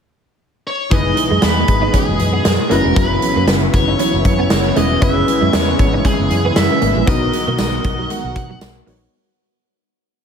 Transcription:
0.67 C#5
0.90 F#1 B2 E3 G#3 D#4 E4 G#4 B4 D#5, kick, closed hi-hat
1.17 muted clean electric guitar stroke, closed hi-hat
1.30 F#2 G#3
1.42 E2 B3 B4, snare, closed hi-hat
1.56 muted clean electric guitar stroke
1.68 G#1, kick, closed hi-hat
1.82 D#4
1.93 C#4 G#4, kick, closed hi-hat
2.08 F#1
2.19 F#2, muted clean electric guitar stroke, closed hi-hat
2.33 B3
2.44 F#2, muted clean electric guitar stroke, snare, closed hi-hat
2.70 F#1 C#3 E3 F#3 A#3 B3 C#4 E4 F#4 A#4 B4, closed hi-hat
2.84 E1 G#3
2.96 F#1 F#3 B4, kick, closed hi-hat
3.22 muted clean electric guitar stroke, closed hi-hat
3.36 F#2 A#3
3.48 F#1 B3, snare, closed hi-hat
3.62 muted clean electric guitar stroke
3.73 F#1 C#5, kick, closed hi-hat
3.88 D#4
3.99 C#4 C#5, closed hi-hat
4.14 F#1
4.25 F#2, muted clean electric guitar stroke, kick, closed hi-hat
4.39 B3
4.50 F#1, snare, closed hi-hat
4.76 E1 G#3 C#4 E4 F#4 B4 D#5, closed hi-hat
5.01 F#1 C#3 E3 G#3 C#4 E4 G#4 B4 E5, kick, closed hi-hat
5.27 muted clean electric guitar stroke, closed hi-hat
5.41 F#2 G#3
5.53 E2 B3 C#5, snare, closed hi-hat
5.68 muted clean electric guitar stroke
5.79 G#1, kick, closed hi-hat
5.93 D#4
6.05 C#4 G#4, kick, closed hi-hat
6.19 F#1
6.30 F#2, muted clean electric guitar stroke, closed hi-hat
6.45 B3
6.55 F#2 C#4 E4 G#4 B4 E5, muted clean electric guitar stroke, snare, closed hi-hat
6.81 G#1 A#3, closed hi-hat
6.96 A#1 G#3
7.06 B1 D#3 F#3 B3 D#4 F#4 A#4 D#5, kick, closed hi-hat
7.33 muted clean electric guitar stroke, closed hi-hat
7.47 B2 A#3
7.58 B1 G#3 D#5, snare, closed hi-hat, tambourine
7.73 muted clean electric guitar stroke
7.84 B1, kick, closed hi-hat
7.98 F#3
8.10 G#3 F#5, closed hi-hat
8.24 B1
8.35 B2, muted clean electric guitar stroke, kick, closed hi-hat
8.50 F#3
8.61 B1, snare, closed hi-hat, tambourine
8.86 A#1 A#3 B3 D#4 F#4 C#5, open hi-hat

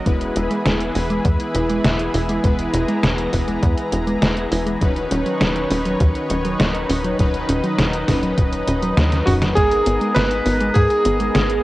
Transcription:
0.06 E1 E3 G#3 B3 E4 G#4 B4, kick, closed hi-hat
0.21 closed hi-hat
0.36 E1 E4, closed hi-hat
0.51 G#3, closed hi-hat
0.65 E1 G#3, snare, closed hi-hat
0.80 closed hi-hat
0.95 E1 G#3 B3 E4 B4, open hi-hat
1.10 G#3, closed hi-hat
1.25 E2 G#3, kick, closed hi-hat
1.40 closed hi-hat
1.55 E1 E4, closed hi-hat
1.70 G#3, closed hi-hat
1.84 E1 G#3, snare, closed hi-hat
1.99 closed hi-hat
2.14 E1 E4, open hi-hat
2.29 G#3, closed hi-hat
2.44 E1 G#3 B3 E4 B4 A#5, kick, closed hi-hat
2.59 closed hi-hat
2.73 E1 E4, closed hi-hat
2.88 G#3, closed hi-hat
3.03 E1, snare, closed hi-hat
3.18 closed hi-hat
3.33 E1 G#3 B3 E4 B4, kick, open hi-hat
3.48 G#3, closed hi-hat
3.63 E2 G#3, kick, closed hi-hat
3.78 closed hi-hat
3.92 E1 E4, closed hi-hat
4.07 G#3, closed hi-hat
4.22 E1 G#3, snare, closed hi-hat
4.37 closed hi-hat
4.52 E1 E4, open hi-hat
4.66 G#3, closed hi-hat
4.81 D#1 D#3 F#3 C#4 D#4 B4 C#5, kick, closed hi-hat
4.96 closed hi-hat
5.11 D#1 C#4, closed hi-hat
5.26 F#3, closed hi-hat
5.41 D#1 F#3, snare, closed hi-hat
5.56 closed hi-hat
5.70 D#1 F#3 C#4 D#4 B4, open hi-hat
5.85 F#3, closed hi-hat
6.00 D#2 F#3, kick, closed hi-hat
6.15 closed hi-hat
6.30 D#1 C#4, closed hi-hat
6.45 F#3, closed hi-hat
6.60 D#1 F#3, snare, closed hi-hat
6.74 closed hi-hat
6.89 D#1 C#4, open hi-hat
7.04 F#3, closed hi-hat
7.19 D#1 F#3 C#4 D#4 B4 D#5, kick, closed hi-hat
7.34 closed hi-hat
7.49 D#1 C#4, closed hi-hat
7.64 F#3, closed hi-hat
7.78 D#1 F#3, snare, closed hi-hat
7.93 closed hi-hat
8.08 D#1 F#3 C#4 D#4 B4, kick, snare, open hi-hat
8.23 F#3, closed hi-hat
8.38 D#1 F#3, kick, closed hi-hat
8.53 closed hi-hat
8.68 D#1 C#4, closed hi-hat
8.83 F#3, closed hi-hat
8.97 D#2 F#3, snare, closed hi-hat
9.12 snare, closed hi-hat
9.26 D#1 C#4 F#4, open hi-hat, mid tom
9.42 F#3, snare, closed hi-hat
9.55 G#1 G#3 B3 D#4 G#4 A#4 D#5 A#5, kick, closed hi-hat
9.72 closed hi-hat
9.86 G#1 B3, closed hi-hat
10.01 G#3, closed hi-hat
10.15 G#1 G#3 B4, snare, closed hi-hat
10.31 closed hi-hat
10.46 G#1 G#3 B3 D#4 A#4, open hi-hat
10.61 G#3, closed hi-hat
10.74 G#2 G#4, kick, closed hi-hat
10.90 closed hi-hat
11.05 G#1 B3, closed hi-hat
11.20 G#3, closed hi-hat
11.35 G#1 G#3, snare, closed hi-hat
11.50 closed hi-hat

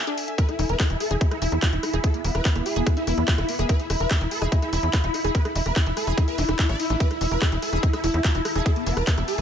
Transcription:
Already playing: A4 E5 G#5
0.07 D4, cross-stick, closed hi-hat
0.18 open hi-hat
0.28 E5, closed hi-hat
0.38 E4 B4, kick, closed hi-hat
0.49 E4, cross-stick, closed hi-hat
0.59 E1 E4, open hi-hat
0.65 B5
0.69 E1 B4, closed hi-hat
0.80 E4, kick, cross-stick, clap, closed hi-hat
0.90 E1 E4, closed hi-hat
1.00 A4, cross-stick, open hi-hat
1.11 E1 E4 G#4, closed hi-hat
1.21 E4 G#4, kick, closed hi-hat
1.31 E4 E5, cross-stick, closed hi-hat
1.42 E1 E4, open hi-hat
1.52 E2 E4, cross-stick, closed hi-hat
1.62 E4 F4, kick, clap, closed hi-hat
1.73 E1 E4, closed hi-hat
1.83 E4, cross-stick, open hi-hat
1.93 E1 E4 G#4, closed hi-hat
2.04 E4 A4, kick, cross-stick, closed hi-hat
2.14 B3, closed hi-hat
2.24 E1 B3 E4, open hi-hat
2.35 E1 B4, cross-stick, closed hi-hat
2.45 B3 E4, kick, clap, closed hi-hat
2.56 E1 B3 E4, cross-stick, closed hi-hat
2.66 G#4, open hi-hat
2.76 E1 B3 G#4, closed hi-hat
2.87 B3 G#4, kick, cross-stick, closed hi-hat
2.97 E4 E5, closed hi-hat
3.07 E1 B3 E4, cross-stick, open hi-hat
3.18 E2 B3, closed hi-hat
3.28 B3 F4, kick, clap, closed hi-hat
3.38 E1 E4, cross-stick, closed hi-hat
3.49 B3, open hi-hat
3.59 E1 B3 G#4, cross-stick, closed hi-hat
3.69 E4 B4, kick, closed hi-hat
3.80 E4, closed hi-hat
3.90 E1 E4, cross-stick, open hi-hat
4.00 E1 B4, closed hi-hat
4.11 E4, kick, cross-stick, clap, closed hi-hat
4.21 E1 E4, closed hi-hat
4.31 A4, open hi-hat
4.42 E1 E4 G#4, cross-stick, closed hi-hat
4.52 E4 G#4, kick, closed hi-hat
4.62 E4 E5, cross-stick, closed hi-hat
4.73 E1 E4, open hi-hat
4.83 E2 E4, closed hi-hat
4.93 E4 F4, kick, cross-stick, clap, closed hi-hat
5.04 E1 E4, closed hi-hat
5.14 E4, cross-stick, open hi-hat
5.24 E1 E4 G#4, closed hi-hat
5.35 E4 B4, kick, closed hi-hat
5.45 E4, cross-stick, closed hi-hat
5.55 E1 E4, open hi-hat
5.66 E1 B4, cross-stick, closed hi-hat
5.76 E4, kick, clap, closed hi-hat
5.86 E1 E4, closed hi-hat
5.97 A4, cross-stick, open hi-hat
6.07 E1 E4 G#4, closed hi-hat
6.17 E4 G#4, kick, cross-stick, closed hi-hat
6.28 B4 E5, closed hi-hat
6.38 E1 D4 E4, open hi-hat
6.49 E1 E4, cross-stick, closed hi-hat
6.59 D4 E4, kick, clap, closed hi-hat
6.69 A1 D5 E5, cross-stick, closed hi-hat
6.80 E4, open hi-hat
6.90 A1 D4 E4, closed hi-hat
7.00 E4 B4, kick, closed hi-hat
7.11 E4, cross-stick, closed hi-hat
7.21 E1 E4, open hi-hat
7.27 A5
7.31 E1 B4, closed hi-hat
7.42 E4, kick, cross-stick, clap, closed hi-hat
7.52 E1 E4, closed hi-hat
7.62 A4, cross-stick, open hi-hat
7.73 E1 E4 G#4, closed hi-hat
7.83 E4 G#4, kick, closed hi-hat
7.93 E4 E5, cross-stick, closed hi-hat
8.04 E1 E4, open hi-hat
8.14 E2 E4, cross-stick, closed hi-hat
8.24 E4 F4, kick, clap, closed hi-hat
8.35 E1 E4, closed hi-hat
8.45 E4, cross-stick, open hi-hat
8.55 E1 E4 G#4, closed hi-hat
8.66 E4 A4, kick, cross-stick, closed hi-hat
8.76 B3, closed hi-hat
8.87 E1 B3 E4, open hi-hat
8.97 E1 B4, cross-stick, closed hi-hat
9.07 B3 E4, kick, clap, closed hi-hat
9.18 E1 B3 E4, cross-stick, closed hi-hat
9.28 G#4, open hi-hat
9.38 E1 B3 G#4, closed hi-hat

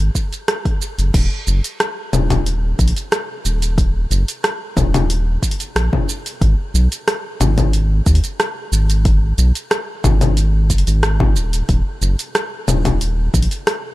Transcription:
0.15 kick, shaker
0.33 open hi-hat, shaker
0.48 cross-stick, open hi-hat, shaker
0.65 kick, open hi-hat
0.82 shaker
0.98 F#1, open hi-hat, shaker
1.14 D#1, kick, open hi-hat, crash, shaker
1.47 F#1, shaker
1.64 open hi-hat, shaker
1.80 cross-stick, open hi-hat, shaker
2.13 D#1, open hi-hat, low conga, shaker
2.30 kick, open hi-hat, low conga, shaker
2.46 open hi-hat, shaker
2.79 A#1, kick, open hi-hat, shaker
2.88 open hi-hat
2.96 open hi-hat, shaker
3.12 cross-stick, open hi-hat, shaker
3.45 D#1, shaker
3.62 open hi-hat, shaker
3.78 kick, open hi-hat, shaker
4.11 F#1, open hi-hat, shaker
4.28 open hi-hat, shaker
4.44 cross-stick, open hi-hat, shaker
4.77 D#1, kick, open hi-hat, low conga, shaker
4.94 open hi-hat, low conga, shaker
5.10 open hi-hat, shaker
5.43 kick, open hi-hat, shaker
5.51 open hi-hat
5.60 open hi-hat, shaker
5.76 A#1, cross-stick, open hi-hat, shaker
5.93 kick, low conga
6.09 shaker
6.26 open hi-hat, shaker
6.41 G#1, kick, open hi-hat, shaker
6.74 B1, shaker
6.92 open hi-hat, shaker
7.08 cross-stick, open hi-hat, shaker
7.40 G#1, open hi-hat, low conga, shaker
7.58 kick, open hi-hat, low conga, shaker
7.73 open hi-hat, shaker
8.06 D#2, kick, open hi-hat, shaker
8.15 open hi-hat
8.24 open hi-hat, shaker
8.40 cross-stick, open hi-hat, shaker
8.72 G#1, shaker
8.90 open hi-hat, shaker
9.05 kick, open hi-hat, shaker
9.38 B1, open hi-hat, shaker
9.55 open hi-hat, shaker
9.71 cross-stick, open hi-hat, shaker
10.04 G#1, kick, open hi-hat, low conga, shaker
10.21 open hi-hat, low conga, shaker
10.37 open hi-hat, shaker
10.70 F#1, kick, open hi-hat, shaker
10.78 open hi-hat
10.87 G#1, open hi-hat, shaker
11.03 cross-stick, open hi-hat, shaker
11.20 kick, low conga
11.36 D#1, shaker
11.53 open hi-hat, shaker
11.69 D#1, kick, open hi-hat, shaker
12.02 F#1, shaker
12.19 open hi-hat, shaker
12.35 cross-stick, open hi-hat, shaker
12.68 D#1, open hi-hat, low conga, shaker
12.85 kick, open hi-hat, low conga, shaker
13.01 open hi-hat, shaker
13.34 A#1, kick, open hi-hat, shaker
13.43 open hi-hat
13.51 open hi-hat, shaker
13.67 cross-stick, open hi-hat, shaker

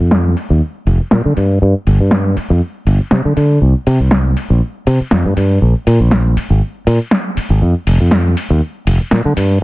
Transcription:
0.00 F2
0.11 snare
0.37 open hi-hat
0.50 D#2
0.87 F1, open hi-hat
1.00 muted fingered electric bass stroke
1.11 A#2, snare
1.25 D3
1.37 G2, open hi-hat
1.62 G2
1.87 G1, open hi-hat
2.00 G2
2.11 snare
2.37 muted fingered electric bass stroke, open hi-hat
2.50 F2
2.87 G1, open hi-hat
3.00 muted fingered electric bass stroke
3.11 C3, snare
3.25 D3
3.37 D3, open hi-hat
3.62 C2
3.87 C3, open hi-hat
4.00 C2
4.11 snare
4.37 open hi-hat
4.50 A#1
4.87 C3, open hi-hat
5.01 muted fingered electric bass stroke
5.11 F2, snare
5.25 G2
5.37 G2, open hi-hat
5.62 A#1
5.87 A#2, open hi-hat
6.00 A#1
6.11 snare
6.37 muted fingered electric bass stroke, open hi-hat
6.50 G#1
6.87 A#2, open hi-hat
7.11 snare
7.37 muted fingered electric bass stroke, open hi-hat
7.50 G#1
7.62 F2
7.87 F1, open hi-hat
8.00 F2
8.11 snare
8.37 open hi-hat
8.50 D#2
8.87 F1, open hi-hat
9.00 muted fingered electric bass stroke
9.11 A#2, snare
9.25 D3
9.37 G2, open hi-hat

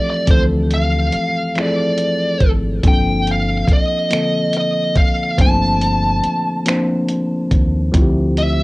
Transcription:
Already playing: E3 F3 A3 C4 A4
0.10 D5
0.27 D2 E3 F3 A3 C4 A4 C5, kick, closed hi-hat
0.71 F5, closed hi-hat
1.12 muted fingered electric bass stroke, closed hi-hat
1.55 F3 A3 C4 E4 G#4, finger snap, closed hi-hat
1.61 D5
1.65 A4
1.98 closed hi-hat
2.40 G#1, kick, closed hi-hat
2.83 G1 F3 A#3 C4 D4 A4, kick, closed hi-hat
2.88 G5
3.27 closed hi-hat
3.31 F5
3.67 kick, closed hi-hat
3.73 D#5
4.10 D3 F3 A#3 C4 A4, finger snap, closed hi-hat
4.53 closed hi-hat
4.58 D#5
4.96 F5, kick, closed hi-hat
5.38 G1 F3 A3 C4 D4 C5 A5, kick, closed hi-hat
5.45 A#3
5.81 closed hi-hat
6.24 muted fingered electric bass stroke, closed hi-hat
6.66 F3 A#3 C4 D4 C5, finger snap, closed hi-hat
7.08 closed hi-hat
7.51 D#2, kick, closed hi-hat
7.92 D2 F3 A3 C4 E4 F4, kick, closed hi-hat
8.02 G4
8.37 E5, closed hi-hat

